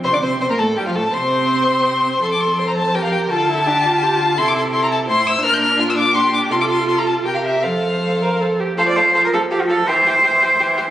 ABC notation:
X:1
M:3/4
L:1/16
Q:1/4=165
K:F
V:1 name="Violin"
c' d' c'2 c' b a2 g f a2 | c'12 | c' d' c'2 c' b a2 g f g2 | a12 |
c' d' c'2 c' b a2 c'2 e'2 | f' g' f'2 f' e' d'2 c'2 d'2 | c' d' c'2 c' b a2 g f e2 | f8 z4 |
f2 f2 f2 f2 f2 f2 | g2 g2 g2 g2 g2 g2 |]
V:2 name="Violin"
c d c2 c B A2 G F A2 | c12 | A4 c4 B4 | A4 G4 F4 |
A4 A4 c4 | B4 F4 G4 | A4 A4 B4 | c8- c2 z2 |
A2 A2 A2 A2 A2 A2 | G2 G2 G2 G2 G2 G2 |]
V:3 name="Viola"
C D C2 C B, A,2 G, F, A,2 | C12 | A8 G4 | F2 E2 D2 F2 G2 F2 |
E4 E4 E4 | D12 | F8 G4 | A4 A2 B2 A2 G2 |
F,4 F,4 F,4 | E,4 E,4 E,4 |]
V:4 name="Cello" clef=bass
C, D, C,2 C, B,, A,,2 G,, F,, A,,2 | C,12 | F,,12 | D,12 |
C,8 A,,4 | B,,12 | C,8 C,4 | F,,8- F,,2 z2 |
c d c2 c B A2 G F A2 | c12 |]